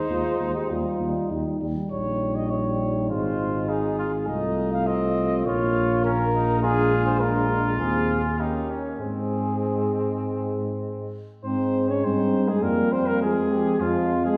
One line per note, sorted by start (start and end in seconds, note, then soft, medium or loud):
0.00 1.61 D#4 medium
0.00 1.27 C5 medium
0.09 0.23 D#2 soft
0.09 0.40 G#3 soft
0.09 0.57 F4 medium
0.39 0.53 D#2 soft
0.39 0.70 G#3 soft
0.56 0.72 G4 soft
0.70 0.84 D#2 soft
0.70 0.99 G3 soft
0.70 1.32 F4 medium
0.99 1.13 D#2 soft
0.99 1.30 G3 soft
1.30 1.44 D#2 soft
1.30 1.60 G3 soft
1.30 1.74 D#4 soft
1.60 1.75 D#2 soft
1.60 1.90 G3 soft
1.91 3.11 A#1 soft
1.91 3.11 G3 soft
1.91 4.24 D#4 soft
1.91 2.37 C#5 medium
2.36 2.52 D#5 medium
2.50 3.09 C#5 medium
3.09 4.27 G#1 soft
3.09 4.10 G#3 soft
3.09 3.70 F4 medium
3.09 3.68 C5 medium
3.69 3.98 D#4 soft
3.69 4.29 G#4 medium
3.98 4.12 F4 medium
4.27 5.43 C2 medium
4.27 5.47 A3 medium
4.27 4.88 D#4 medium
4.27 6.63 F4 medium
4.27 4.72 D#5 medium
4.73 4.89 F5 medium
4.87 5.46 C4 medium
4.87 5.45 D#5 medium
5.45 7.80 A#1 medium
5.45 6.61 A#3 medium
5.45 6.04 F4 medium
5.45 6.03 C#5 medium
6.04 6.18 C#4 medium
6.04 6.61 A#4 medium
6.34 6.62 D#4 medium
6.61 8.08 G#3 medium
6.61 7.79 D4 medium
6.61 7.20 F4 medium
6.61 7.05 G#4 medium
7.06 7.22 C5 medium
7.20 8.41 F4 medium
7.20 7.79 A#4 medium
7.79 8.71 D#2 medium
7.79 8.18 C4 medium
7.79 8.23 G#4 medium
8.24 8.40 G#4 medium
8.39 9.01 A#3 soft
8.39 9.02 C#4 soft
8.39 8.71 D#4 medium
8.39 8.78 G4 medium
8.70 9.00 C#4 soft
8.99 11.09 G#2 soft
8.99 11.14 G#3 soft
8.99 11.14 C4 soft
8.99 11.10 C4 soft
8.99 10.79 G#4 medium
11.44 12.06 G#2 soft
11.44 12.64 G#3 medium
11.44 11.91 C4 medium
11.44 12.00 D#4 soft
11.44 11.86 C5 medium
11.89 12.05 C#4 medium
11.89 12.05 C#5 medium
12.04 12.64 G2 medium
12.04 12.50 C4 medium
12.04 12.65 D#4 medium
12.04 12.49 C5 medium
12.48 12.65 G#3 medium
12.48 12.64 G#4 medium
12.62 13.80 F2 medium
12.62 13.24 G3 medium
12.62 12.92 A#3 medium
12.62 13.21 F4 soft
12.62 12.94 A#4 medium
12.92 13.07 C4 medium
12.92 13.08 C5 medium
13.07 13.24 A#3 medium
13.07 13.21 A#4 medium
13.22 13.79 F3 soft
13.22 13.81 G#3 medium
13.22 13.53 G#4 medium
13.22 13.82 G#4 medium
13.51 13.79 G4 medium
13.80 14.37 F2 medium
13.80 14.24 F3 medium
13.80 14.37 G#3 medium
13.80 14.37 F4 medium
13.80 14.24 F4 medium
14.26 14.37 G#3 medium
14.26 14.37 G#4 medium